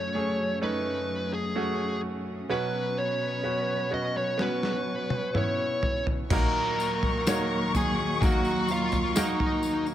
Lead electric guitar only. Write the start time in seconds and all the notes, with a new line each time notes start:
Already playing: C#5
0.63 B4
1.34 G#4
2.51 B4
2.98 C#5
3.94 D#5
4.17 C#5
4.42 B4
5.37 C#5
6.33 A#4 A#5
7.76 G#4 G#5
8.25 F#4 F#5
8.72 F4 F5
9.18 D#4 D#5